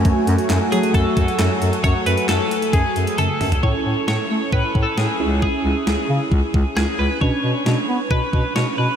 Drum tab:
HH |x-xxx-xxx-xxx-xx|x-xxx-xxx-xxx-ox|----------------|----------------|
CP |----x-------x---|----x-----------|----------------|----------------|
SD |----o-------o---|----o-----------|----o-------o---|----o-------o---|
T1 |----------------|------------o---|----------------|----------------|
T2 |----------------|--------------o-|----------------|----------------|
FT |----------------|---------------o|----------------|----------------|
BD |o-------o-o-----|o-------o-------|o-------o-o-----|o-------o-o-----|

HH |----------------|
CP |----------------|
SD |----o-------o---|
T1 |----------------|
T2 |----------------|
FT |----------------|
BD |o-------o-o-----|